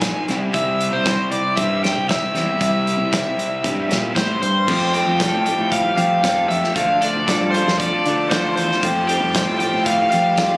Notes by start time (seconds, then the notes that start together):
Already playing: A#1 C4 D#4 A#4 G#5
0.01 G#2 D#3 G#3 C4 D#4 G#4, kick, snare, closed hi-hat
0.27 C2 C3 G3 C4 E4 G4, snare, closed hi-hat
0.54 C2 E5, kick, closed hi-hat
0.81 closed hi-hat
0.93 C2 C5
1.06 G3 C4 E4, kick, snare, closed hi-hat
1.31 C2 D5, closed hi-hat
1.56 G2 C3 G3 C4 E4 G4 E5, kick, closed hi-hat
1.82 C3 G3 C4 E4 G4 G5, snare, closed hi-hat
1.96 C2
2.09 E5, kick, snare, closed hi-hat
2.34 E2 C3 G3 C4 E4 G4, snare, closed hi-hat
2.61 C2 E5, kick, closed hi-hat
2.87 closed hi-hat
3.00 C2
3.12 G3 C4 E4, kick, snare, closed hi-hat
3.38 C2, closed hi-hat
3.64 G2 C3 G3 C4 E4 G4, kick, closed hi-hat
3.89 A#2 C3 G3 C4 E4 G4, snare, closed hi-hat
4.16 A2 C5, kick, snare, closed hi-hat
4.42 G2 C5, closed hi-hat
4.66 F2 F3 A3 C4 G4 F5 A5, kick, crash
4.94 A3 C4 G4 G5, closed hi-hat
5.07 F2
5.20 F3 A3 C4 G4 A4, kick, snare, closed hi-hat
5.33 A2
5.46 A3 C4 G4 G5, closed hi-hat
5.58 A2
5.72 G3 F5, kick, closed hi-hat
5.97 F3 A3 C4 G4 F5, closed hi-hat
6.23 F2 F3 A3 C4 G4 A4, kick, snare, closed hi-hat
6.49 F2 G4 E5, closed hi-hat
6.64 snare
6.75 D2 D3 F3 A3 D4 F4 D5 F5, kick, closed hi-hat
7.01 A3 D4 F4 D5, closed hi-hat
7.15 D2
7.27 F3 A3 D4 A4, kick, snare, closed hi-hat
7.31 F4
7.41 G2
7.51 F4 C5, closed hi-hat
7.55 A3 D4
7.67 F2, snare
7.79 D3 D5, kick, closed hi-hat
8.06 D3 A3 D4 F4, closed hi-hat
8.30 D2 F3 A3 D4 F4 A4 C5, kick, snare, closed hi-hat
8.56 E2 F4 C5, closed hi-hat
8.72 snare
8.83 F2 F3 A3 C4 G4 F5, kick, closed hi-hat
9.08 G3 A3 C4 G4 G5, closed hi-hat
9.23 F2
9.35 F3 A3 C4 G4 C5, kick, snare, closed hi-hat
9.49 A2
9.59 A3 C4 F4 G4 G5, closed hi-hat
9.74 A2
9.86 A3 F5, kick, closed hi-hat
10.11 F3 G3 A3 C4 G4 F5, closed hi-hat
10.37 F2 F3 A3 C4 G4 C5, kick, snare, closed hi-hat